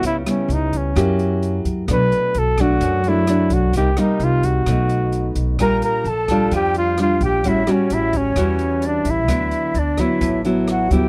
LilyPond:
<<
  \new Staff \with { instrumentName = "Flute section" } { \time 4/4 \key d \major \tempo 4 = 130 r1 | r1 | r1 | bes''8 bes''8 a''4 g''8 f''8 f''8 g''8 |
e''8 cis''8 e''8 cis''4. d''8 e''8~ | e''4 d''8 e''4 r8 fis''8 g''8 | }
  \new Staff \with { instrumentName = "Flugelhorn" } { \time 4/4 \key d \major e'8 cis'8 ees'8 cis'2 r8 | b'4 a'8 fis'4 e'4 fis'8 | g'8 ees'8 f'8 fis'2 r8 | bes'8 bes'8 a'4 g'8 f'8 f'8 g'8 |
e'8 cis'8 e'8 cis'4. d'8 e'8~ | e'4 d'8 e'4 r8 fis'8 g'8 | }
  \new Staff \with { instrumentName = "Nylon-string guitar" } { \time 4/4 \key d \major << { <g b e'>8 <g b e'>4. <ais e' g'>2 | <fis a d'>4 r8 <fis a d'>4 <fis a d'>8 <fis a d'>4 | <g bes ees'>8 <g bes ees'>4. <a dis'>2 | <g d' f'>4 r8 <g d' f'>4. <g d' f'>4 |
<g cis' fis'>8 <g cis' fis'>4. <g cis' fis'>2 | <fis b e'>4 r8 <fis b e'>4 <fis b e'>4 <fis b e'>8 | } \\ { cis2 fis2 | b,2 fis,2 | c2 b,2 | bes,2 f2 |
a,2 e2 | d2 a,2 | } >> }
  \new Staff \with { instrumentName = "Upright bass" } { \clef bass \time 4/4 \key d \major cis,8 r8 cis,4 fis,4. fis,8 | b,,8 r8 b,,4 fis,4. b,,8 | c,8 r8 c,4 b,,4. b,,8 | bes,,8 r8 bes,,4 f,4. bes,,8 |
a,,8 r8 a,,4 e,4. a,,8 | d,8 r8 d,4 a,,4. d,8 | }
  \new DrumStaff \with { instrumentName = "Drums" } \drummode { \time 4/4 <hh bd>8 <hh ss>8 hh8 <hh bd>8 <hh bd ss>8 hh8 hh8 <hh bd>8 | <hh bd ss>8 hh8 hh8 <hh bd ss>8 <hh bd>8 hh8 <hh ss>8 <hh bd>8 | <hh bd>8 <hh ss>8 hh8 <hh bd>8 <hh bd ss>8 hh8 hh8 hh8 | <hh bd ss>8 hh8 hh8 <hh bd ss>8 <hh bd>8 hh8 <hh ss>8 <hh bd>8 |
<hh bd>8 <hh ss>8 hh8 <hh bd>8 <hh bd ss>8 hh8 hh8 <hh bd>8 | <hh bd ss>8 hh8 hh8 <hh bd ss>8 <hh bd>8 hh8 <hh ss>8 <hh bd>8 | }
>>